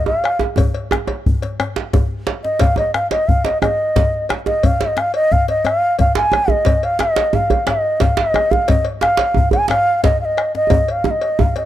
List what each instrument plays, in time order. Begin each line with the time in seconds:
0.06 bansuri F5, djembe slap, djembe tone
0.24 bombo rim, cowbell, djembe slap
0.39 djembe slap, djembe tone
0.56 bombo low, cowbell, djembe tone, djembe bass
0.74 cowbell
0.91 bombo rim, djembe slap, djembe tone
1.07 cowbell, djembe tone
1.26 bombo low, djembe slap, djembe bass
1.42 cowbell, djembe slap
1.60 bombo rim, cowbell, djembe slap, djembe tone
1.76 djembe slap
1.93 bombo low, cowbell, djembe slap, djembe tone, djembe bass
2.11 djembe slap
2.27 cowbell, djembe slap
2.44 bansuri D#5, djembe slap
2.59 cowbell, djembe slap
2.61 bansuri F5, bombo low, djembe slap, djembe tone, djembe bass
2.76 bansuri D#5, cowbell, djembe tone
2.94 bansuri F5, bombo rim, djembe slap
3.11 bansuri D#5, bombo rim, cowbell, djembe slap
3.12 djembe slap
3.28 bansuri F5, bombo low, djembe slap, djembe bass
3.45 bansuri D#5, cowbell, djembe slap
3.46 djembe slap
3.61 bansuri D#5, bombo rim, cowbell, djembe slap, djembe tone
3.96 bombo low, cowbell, djembe slap, djembe bass
4.12 djembe slap
4.29 bombo rim, cowbell, djembe slap
4.46 bansuri D#5, bombo rim, djembe slap, djembe tone
4.63 bansuri F5, bombo low, cowbell, djembe tone, djembe bass
4.80 bansuri D#5, cowbell, djembe slap
4.97 bansuri F5, bombo rim, djembe slap
5.14 bansuri D#5, cowbell
5.32 bansuri F5, bombo low, djembe slap, djembe bass
5.48 bansuri D#5, cowbell, djembe slap
5.65 bansuri F5, bombo rim, cowbell, djembe slap, djembe tone
5.99 bansuri F5, bombo low, cowbell, djembe slap, djembe bass
6.15 bansuri G#5, djembe slap
6.32 bombo rim, cowbell, djembe tone
6.48 bansuri D#5, djembe slap, djembe bass
6.65 bombo low, cowbell, djembe slap, djembe tone, djembe bass
6.83 bansuri F5, cowbell
6.99 bansuri D#5, bombo rim, djembe slap
7.16 cowbell, djembe slap
7.33 bansuri F5, djembe slap, djembe tone, djembe bass
7.50 cowbell, djembe slap, djembe bass
7.67 bansuri D#5, bombo rim, cowbell, djembe slap, djembe tone
8.00 bansuri F5, bombo low, cowbell, djembe slap, djembe bass
8.17 bansuri D#5, djembe slap
8.19 djembe slap
8.34 bombo rim, cowbell, djembe tone
8.51 bansuri F5, djembe slap, djembe bass
8.68 bansuri D#5, bombo low, cowbell, djembe slap, djembe tone, djembe bass
8.85 cowbell
9.01 bansuri F5, bombo rim, djembe slap
9.17 cowbell, djembe slap
9.34 bombo low, djembe slap, djembe tone, djembe bass
9.51 bansuri G#5, cowbell, djembe slap, djembe bass
9.68 djembe slap
9.70 bansuri F5, bombo rim, cowbell, djembe slap, djembe tone
10.04 bansuri D#5, bombo low, cowbell, djembe slap, djembe bass
10.20 bansuri F5, djembe slap
10.25 bansuri D#5
10.37 bombo rim, cowbell, djembe slap
10.55 bansuri D#5, djembe slap
10.70 bombo low, cowbell, djembe tone, djembe bass
10.88 bansuri F5, cowbell, djembe slap
11.04 bansuri F5, djembe slap, djembe tone
11.11 bansuri D#5
11.21 bombo rim, cowbell
11.39 bansuri F5, bombo low, djembe slap, djembe tone, djembe bass
11.56 bansuri D#5, bombo rim, cowbell, djembe slap